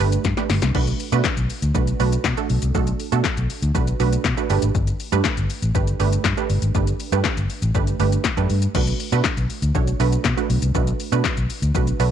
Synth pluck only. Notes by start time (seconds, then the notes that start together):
0.00 A3 D4 G4 B4
0.37 A3 D4 G4 B4
0.75 A3 D4 F#4 B4
1.12 A3 D4 F#4 B4
1.75 A3 D4 F#4 B4
2.00 A3 D4 F#4 B4
2.37 A3 D4 F#4 A4
2.75 A3 D4 F#4 A4
3.12 A3 D4 F#4 A4
3.75 A3 D4 F#4 B4
4.00 A3 D4 F#4 B4
4.37 A3 D4 F#4 B4
4.50 A3 D4 G4 B4
5.12 A3 D4 G4 B4
5.75 A3 D4 G4 B4
6.00 A3 D4 G4 B4
6.37 A3 D4 G4 B4
6.75 A3 D4 G4 B4
7.12 A3 D4 G4 B4
7.75 A3 D4 G4 B4
8.00 A3 D4 G4 B4
8.37 A3 D4 G4 B4
8.75 A3 D4 F#4 B4
9.12 A3 D4 F#4 B4
9.75 A3 D4 F#4 C#5
10.00 A3 D4 F#4 B4
10.37 A3 D4 F#4 B4
10.75 A3 D4 F#4 B4
11.12 A3 D4 F#4 B4
11.75 A3 D4 F#4 B4
12.00 A3 D4 F#4 B4